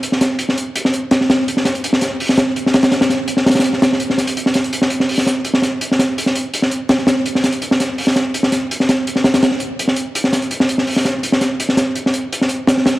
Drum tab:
HH |x---x---x---x---x---x---x---x---|x---x-x-x---x---o---x---x---x-x-|x-x-x---x---xxxxx---x---x---x-x-|x---x-x-x---x---o---x---x---x---|
SD |--o-o-----o-------o-----o-o-o---|--o-o-----o-o-----o-o-----o-o-o-|o-o-o-----o-oooo--o-o-o---o-o---|--o-o-----o---o---o-o-----o-o---|

HH |x---x---x---x---x---x---x---x---|x---x-x-x---x---o---x---x---x---|x---x---x---x-x-x---x---x---x---|x---x-x-x---x---o---x---x---x---|
SD |--o-o-----o-------o-----o-o-o---|--o-o-----o-o-----o-o-----o-o---|--o-o-----o-o-o-o-o-------o-----|--o-o-----o---o---o-o-----o-o---|

HH |x---x---x---x---x---x---x---x---|
SD |--o-o-----o-------o-----o-o-o---|